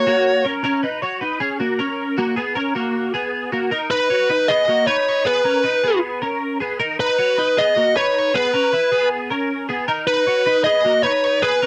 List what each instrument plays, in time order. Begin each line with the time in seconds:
Already playing: lead electric guitar C#5
0.07 clean electric guitar A#3 F#4
0.45 clean electric guitar C#4 A#4
0.64 clean electric guitar C#4 A#4
0.83 clean electric guitar D#4 B4
1.02 clean electric guitar F#4 C#5
1.21 clean electric guitar D#4 B4
1.40 clean electric guitar C#4 G#4
1.60 clean electric guitar A#3 F#4
1.79 clean electric guitar C#4 A#4
2.18 clean electric guitar A#3 F#4
2.36 clean electric guitar B3 G#4
2.55 clean electric guitar C#4 A#4
2.75 clean electric guitar A#3 F#4
3.14 clean electric guitar B3 G#4
3.52 clean electric guitar A#3 F#4
3.71 clean electric guitar D#4 A#4
3.91 clean electric guitar D#4 B4, lead electric guitar B4
4.10 clean electric guitar F#4 C#5
4.29 clean electric guitar D#4 B4
4.48 clean electric guitar B3 G#4, lead electric guitar D#5
4.68 clean electric guitar A#3 F#4
4.87 clean electric guitar D#4 B4, lead electric guitar C#5
5.25 clean electric guitar B3 G#4, lead electric guitar B4
5.44 clean electric guitar C#4 A#4
5.64 clean electric guitar D#4 B4
5.83 clean electric guitar B3 G#4
6.22 clean electric guitar C#4 A#4
6.60 clean electric guitar B3 G#4
6.80 clean electric guitar D#4 A#4
6.99 clean electric guitar D#4 B4, lead electric guitar B4
7.18 clean electric guitar F#4 C#5
7.38 clean electric guitar D#4 B4
7.57 clean electric guitar B3 G#4, lead electric guitar D#5
7.76 clean electric guitar A#3 F#4
7.96 clean electric guitar D#4 B4, lead electric guitar C#5
8.34 clean electric guitar B3 G#4, lead electric guitar B4
8.54 clean electric guitar C#4 A#4
8.73 clean electric guitar E4 B4
8.92 clean electric guitar B3 G#4
9.30 clean electric guitar C#4 A#4
9.69 clean electric guitar B3 G#4
9.88 clean electric guitar D#4 A#4
10.07 clean electric guitar D#4 B4, lead electric guitar B4
10.27 clean electric guitar F#4 C#5
10.46 clean electric guitar D#4 B4
10.64 clean electric guitar B3 G#4, lead electric guitar D#5
10.85 clean electric guitar A#3 F#4
11.03 clean electric guitar D#4 B4, lead electric guitar C#5
11.42 clean electric guitar B3 G#4, lead electric guitar B4
11.62 clean electric guitar C#4 A#4